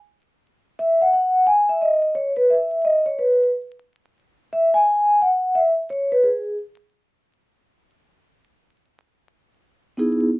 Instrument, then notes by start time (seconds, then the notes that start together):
vibraphone
0.79 E5
1.02 F#5
1.13 F#5
1.47 G#5
1.69 E5
1.82 D#5
2.15 C#5
2.37 B4
2.50 E5
2.85 D#5
3.06 C#5
3.19 B4
4.53 E5
4.74 G#5
5.22 F#5
5.55 E5
5.90 C#5
6.12 B4
6.24 G#4
9.97 B3 D#4 E4 G#4